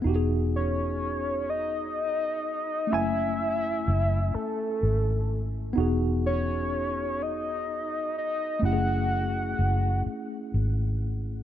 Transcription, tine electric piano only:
\new Staff \with { instrumentName = "Tine electric piano" } { \time 6/8 \key e \major \tempo 4. = 42 <b dis' fis' g' gis'>2. | <a cis' e' gis''>2. | <b dis' fis' gis'>2. | <a cis' e' g' gis'>2. | }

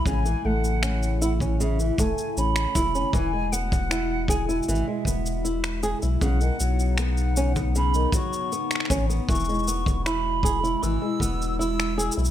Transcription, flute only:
\new Staff \with { instrumentName = "Flute" } { \time 4/4 \key e \major \tempo 4 = 78 gis''8 fis''4 r8 e''8 gis''8 b''4 | gis''8 fis''4 gis''8 e''4. r8 | fis''4 fis''4 b''8 cis'''4 r8 | cis'''4 b''4 e'''4 e'''8. r16 | }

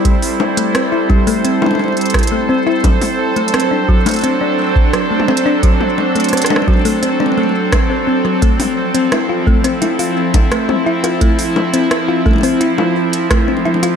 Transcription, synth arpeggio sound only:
\new Staff \with { instrumentName = "Synth arpeggio sound" } { \time 4/4 \key d \dorian \tempo 4 = 86 g16 r8 a16 c'16 e'16 g16 a16 c'16 e'16 r8 g16 a16 c'16 e'16 | fis16 r8 a16 c'16 d'16 fis16 a16 c'16 d'16 r8 fis16 a16 c'16 d'16 | fis16 r8 a16 c'16 d'16 fis16 a16 c'16 d'16 a16 r8 c'16 c'16 fis16 | a16 r8 c'16 e'16 f'16 a16 c'16 e'16 f'16 r8 a16 c'16 e'16 f'16 |
a16 r8 c'16 e'16 f'16 a16 c'16 e'16 f'16 r8 a16 c'16 e'16 f'16 | }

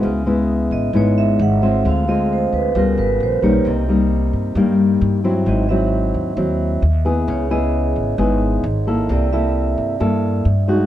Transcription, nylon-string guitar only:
\new Staff \with { instrumentName = "Nylon-string guitar" } { \time 4/4 \key des \lydian \tempo 4 = 132 << { <aes ces' fes'>8 <aes ces' fes'>4. <aes ces' fes'>4 r8 <aes c' f'>8~ | <aes c' f'>8 <aes c' f'>4. <g ces' f'>4. <g bes ees'>8~ | <g bes ees'>8 <g bes ees'>4. <g bes ees'>4. <ges c' fes'>8~ | <ges c' fes'>8 <ges c' fes'>4. <ges c' fes'>4 r8 <ces' fes' aes'>8~ |
<ces' fes' aes'>8 <ces' fes' aes'>4. <ces' fes' aes'>4 r8 <bes fes' a'>8~ | <bes fes' a'>8 <bes e' a'>4. <bes e' a'>4 r8 <aes ees' ges'>8 | } \\ { des2 aes,2 | d2 des2 | c2 g,2 | aes,2 r2 |
des2 aes,2 | c2 g,2 | } >> }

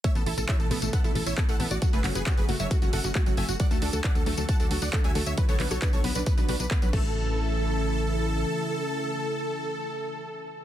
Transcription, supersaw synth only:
\new Staff \with { instrumentName = "Supersaw synth" } { \time 4/4 \key a \major \tempo 4 = 135 <cis'' e''>16 a'16 a'16 a'16 <cis'' e''>16 a'16 a'16 a'16 <a' fis''>16 a'16 a'16 <cis'' e''>16 a'16 <a' fis''>16 a'16 <fis' d''>16 | fis'16 <gis' b'>16 fis'16 <gis' b'>16 fis'16 <gis' b'>16 fis'16 <cis'' e''>16 fis'16 fis'16 <a' fis''>16 fis'16 fis'16 fis'16 <e'' gis''>16 fis'16 | <d'' fis''>16 a'16 a'16 a'16 <d'' fis''>16 a'16 a'16 a'16 <fis'' a''>16 a'16 a'16 <d'' fis''>16 a'16 <e'' gis''>16 a'16 <cis'' e''>16 | b'16 <a' cis''>16 b'16 <a' cis''>16 b'16 <a' cis''>16 b'16 <d' b'>16 b'16 b'16 <d' b'>16 b'16 b'16 b'16 a'8~ |
a'1~ | a'1 | }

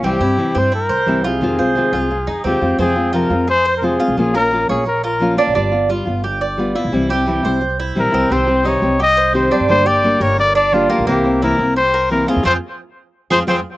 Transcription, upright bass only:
\new Staff \with { instrumentName = "Upright bass" } { \clef bass \time 4/4 \key f \minor \tempo 4 = 174 c,8 g,8 r8 g,4 c,8 c,4 | f,8 c,8 r8 c,4 f,8 ees,8 f,8 | f,4. f,2 r16 c,16 | bes,,4. bes,,2 r16 bes,,16 |
g,,4. g,,2 r16 b,,16 | c,4. c,4. bes,,8 c,8 | c,4. c,2 r16 g,16 | g,,4. g,,2 r16 bes,,16 |
c,4. c,2 r16 e,16 | f,8 r2 f,8 f,8 r8 | }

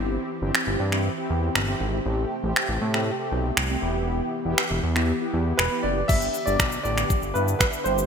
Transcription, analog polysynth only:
\new Staff \with { instrumentName = "Analog polysynth" } { \time 4/4 \key g \major \tempo 4 = 119 <c' e' g'>8 r16 <c' e' g'>8. r16 <c' e' g'>8 <c' e' g'>8. r16 <c' e' g'>8 r16 | <a c' g'>8 r16 <a c' g'>8. r16 <a c' g'>8 <a c' g'>8. r16 <a c' g'>16 <b e' g'>8~ | <b e' g'>8 r16 <b e' g'>8. r16 <b e' g'>8 <b e' g'>8. r16 <b e' g'>8 r16 | <b d' g'>8 r16 <b d' g'>8 r16 <b d' g'>8. r16 <b d' e'>4 <c' e' g'>8 | }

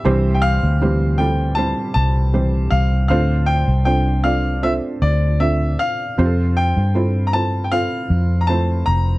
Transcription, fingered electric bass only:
\new Staff \with { instrumentName = "Fingered electric bass" } { \clef bass \time 4/4 \key f \major \tempo 4 = 78 c,8. d,4. r16 c,4 c,8 | d,8. c,4. r16 d,4 r8 | f,8. g,4. r16 f,4 f,,8 | }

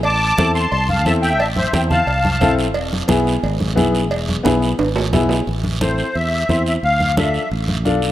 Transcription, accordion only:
\new Staff \with { instrumentName = "Accordion" } { \time 4/4 \key e \phrygian \tempo 4 = 177 <a'' d'''>4. <a'' c'''>8 <a'' c'''>8 <f'' a''>8 <e'' a''>8 <e'' g''>8 | <e'' a''>8 <c'' e''>8 <e'' g''>8 <f'' a''>2 r8 | r1 | r1 |
\key a \minor r4 c''4 e''4. e''8 | f''4 e''4 r2 | }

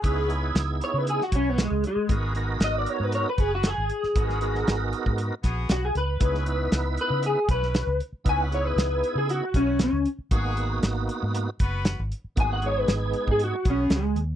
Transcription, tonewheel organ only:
\new Staff \with { instrumentName = "Tonewheel organ" } { \time 4/4 \key gis \minor \tempo 4 = 117 <b dis' e' gis'>8 <b dis' e' gis'>2 r4. | <b dis' fis' ais'>8 <b dis' fis' ais'>2 r4. | <b dis' fis' ais'>8 <b dis' fis' ais'>2 r4. | <b dis' e' gis'>8 <b dis' e' b'>2 r4. |
<b dis' e' b'>8 <b dis' e' gis'>2 r4. | <ais b dis' fis'>8 <ais b dis' fis'>2 r4. | <ais b dis' fis'>8 <gis b dis' gis'>2 r4. | }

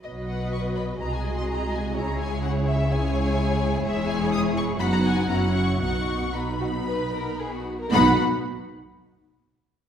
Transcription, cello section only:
\new Staff \with { instrumentName = "Cello section" } { \clef bass \time 4/4 \key b \major \tempo 4 = 122 b,2 bis,2 | cis1 | e,2 fis,4 fis,4 | b,2.~ b,8 r8 |
b,8 r2. r8 | }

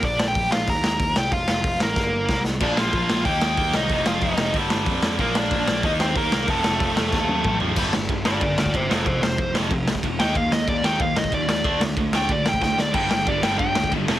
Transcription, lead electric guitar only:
\new Staff \with { instrumentName = "Lead electric guitar" } { \time 4/4 \key g \minor \tempo 4 = 186 <d' d''>8. <g' g''>8. <f' f''>8 <bes' bes''>4. <g' g''>8 | <f' f''>4. <bes bes'>2 r8 | <d' d''>8 <f' f''>4. <g' g''>4 <g' g''>8 <ees' ees''>8~ | <ees' ees''>8 <f' f''>8 <ees' ees''>4 r2 |
<bes bes'>8 <d' d''>4. <ees' ees''>8 <c' c''>8 <bes bes'>4 | <a a'>2.~ <a a'>8 r8 | r4. <f' d''>8 <f' d''>8 <f' d''>8 <g' c''>8 <a' c''>8 | <a' c''>8 c''4 r2 g''8 |
f''8 ees''8 d''8 g''8 f''8 ees''8 d''8 d''8~ | d''8 r4 g''8 d''8 g''8 g''8 d''8 | g''8 g''8 d''8 g''8 g''4 r4 | }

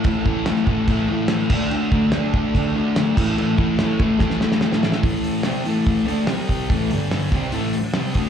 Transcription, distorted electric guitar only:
\new Staff \with { instrumentName = "Distorted electric guitar" } { \clef bass \time 4/4 \key d \lydian \tempo 4 = 144 <a, e a>8 <a, e a>8 <a, e a>8 <a, e a>8 <a, e a>8 <a, e a>8 <a, e a>8 <d a d'>8 | <d a d'>8 <d a d'>8 <d a d'>8 <d a d'>8 <d a d'>8 <d a d'>8 <d a d'>8 <a, e a>8 | <a, e a>8 <a, e a>8 <a, e a>8 <a, e a>8 <a, e a>8 <a, e a>8 <a, e a>8 <a, e a>8 | <a, e a>4 <c g c'>8 <a, e a>4 <d a d'>8 <c g c'>4 |
<a, e a>8 <g, d g>4 <c g c'>8 <a, e a>8 r8 <c g c'>8 <d a d'>8 | }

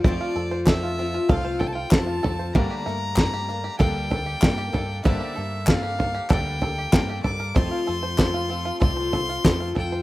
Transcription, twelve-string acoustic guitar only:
\new Staff \with { instrumentName = "Twelve-string acoustic guitar" } { \time 4/4 \key f \major \tempo 4 = 96 <f c' f' a'>8 <c' f' a'>8 <f c' f' a'>8 <c' f' a'>8 <f c' f' a'>8 <c' f' a'>8 <f c' f' a'>8 <c' f' a'>8 | <g, d g bes d'>8 <g bes d'>8 <g bes d'>8 <g bes d'>8 <g, d g bes d' a'>8 <g bes d' a'>8 <g bes d' a'>8 <g bes d' a'>8 | <g, d g bes d' a'>8 <g bes d' a'>8 <g bes d' a'>8 <g bes d' a'>8 <g, d g bes d' a'>8 <g bes d' a'>8 <g bes d' a'>8 <g bes d' a'>8 | <f c' f' a'>8 <c' f' a'>8 <f c' f' a'>8 <c' f' a'>8 <f c' f' a'>8 <c' f' a'>8 <f c' f' a'>8 <c' f' a'>8 | }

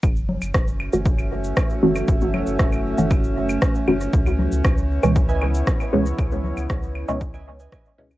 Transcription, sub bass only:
\new Staff \with { instrumentName = "Sub bass" } { \clef bass \time 4/4 \key fis \minor \tempo 4 = 117 fis,,8. fis,,16 fis,,8. fis,,4~ fis,,16 r8 fis,,8 | fis,,8. fis,,16 fis,,8. fis,,4~ fis,,16 r8 fis,,8 | cis,8. cis,16 cis,8. cis,4~ cis,16 r8 cis,8 | cis,8. cis,16 cis,8. cis,4~ cis,16 r8 cis,8 | }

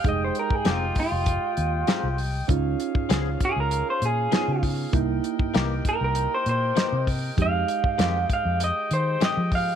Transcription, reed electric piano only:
\new Staff \with { instrumentName = "Reed electric piano" } { \time 4/4 \key f \minor \tempo 4 = 98 <aes ees' aes'>1 | <des' ees' f'>2. <ces' ees' f'>4 | <bes dis' e'>1 | <aes ees' g'>1 | }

